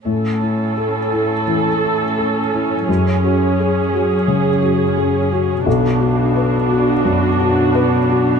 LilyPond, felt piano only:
\new Staff \with { instrumentName = "Felt piano" } { \time 4/4 \key a \major \tempo 4 = 86 a,8 e'8 a'8 e'8 e8 e'8 a'8 e'8 | fis,8 fis'8 gis'8 fis'8 cis8 fis'8 gis'8 fis'8 | b,,8 fis'8 b'8 fis'8 fis,8 fis'8 b'8 fis'8 | }